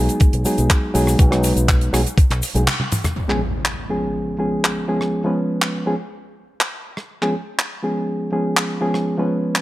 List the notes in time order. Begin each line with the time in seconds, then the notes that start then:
Already playing: F#3 G#3 B3 D#4 G#4
0.09 closed hi-hat, shaker
0.20 muted fingered electric bass stroke, kick, closed hi-hat, shaker
0.33 B1, closed hi-hat
0.45 F#3 G#3 B3 D#4 G#4, open hi-hat, shaker
0.58 B1, closed hi-hat, shaker
0.70 kick, clap, closed hi-hat, shaker
0.94 B1 F#3 G#3 B3 D#4 G#4, open hi-hat, shaker
1.07 cross-stick, shaker
1.19 B1, kick, closed hi-hat, shaker
1.31 F#3 G#3 B3 D#4 B4, cross-stick, closed hi-hat
1.44 open hi-hat, shaker
1.56 B1, closed hi-hat, shaker
1.68 kick, clap, closed hi-hat, shaker
1.81 closed hi-hat
1.93 B1 F#3 G#3 B3 D#4 G#4, cross-stick, open hi-hat, shaker
2.06 closed hi-hat, shaker
2.18 kick, closed hi-hat, shaker
2.30 B1, clap, closed hi-hat
2.42 open hi-hat, shaker
2.54 B1 F#3 G#3 B3 D#4 G#4, closed hi-hat, shaker
2.67 clap, closed hi-hat, high tom, shaker
2.80 high tom
2.92 open hi-hat, mid tom, shaker
3.04 cross-stick, closed hi-hat, mid tom, shaker
3.16 impact
3.28 F3 G#3 B3 C#4 G#4, clap
3.65 clap
3.89 F3 G#3 B3 C#4 G#4
4.39 F3 G#3 B3 C#4 G#4
4.65 clap
4.88 F3 G#3 B3 C#4 G#4
5.01 cross-stick
5.24 F3 G#3 B3 C#4 B4
5.62 clap
5.86 F3 G#3 B3 C#4 G#4
6.61 clap
6.97 cross-stick
7.22 F3 G#3 B3 C#4 G#4, clap
7.59 clap
7.83 F3 G#3 B3 C#4 G#4
8.32 F3 G#3 B3 C#4 G#4
8.57 clap
8.81 F3 G#3 B3 C#4 G#4
8.94 cross-stick
9.18 F3 G#3 B3 C#4 B4
9.56 clap